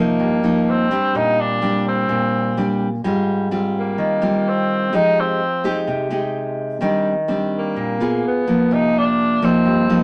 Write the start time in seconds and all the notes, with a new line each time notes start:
Already playing: C3 F3 A#3 D#4
0.00 A#3
0.20 G2
0.43 F3 A#3 D#4
0.70 C4
0.91 G3 C4 D4
1.15 A#2 D#4
1.40 D4
1.62 G3 C4 D4
1.89 C4
2.09 A#2
2.57 G3 C4 D4
3.04 G#2 G3 C4 F4
3.51 G3 C4 F4
3.79 A#3
3.98 D#3
4.22 G3 C4 F4
4.49 C4
4.93 F3 G#3 D#4 G4
5.20 C4
5.64 G#3 D#4 G4
5.87 C3
6.10 G#3 D#4 G4
6.81 D#3 G3 C4 D4
7.28 G3 C4 D4
7.58 A#3
7.76 A#2
8.00 B3 F4 G#4
8.27 B3
8.47 F3 A#3
8.71 C3 D#4
8.98 D4
9.42 F3 A#3 C4 D#4
9.65 G2
9.89 F3 A#3 D#4